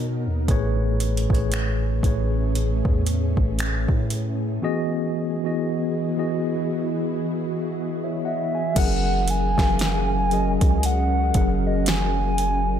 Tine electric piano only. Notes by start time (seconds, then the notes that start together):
0.48 A2 A3 G#4 B4 C#5
1.30 A2 A3 G#4 B4 C#5
2.03 A2 A3 G#4 B4 C#5
4.62 E3 B3 F#4 G#4 D#5
5.44 E3 B3 F#4 G#4 D#5
6.17 E3 B3 F#4 G#4 D#5
8.04 C#5 E5
8.25 D#5 F#5
8.55 E5 G#5
8.75 F#3 C#4 G#4 A#4 F#5
9.57 F#3 C#4 G#4 A#4 F5
10.31 F#3 C#4 G#4 A#4 D#5
11.35 F#3 C#4 G#4 A#4 F#5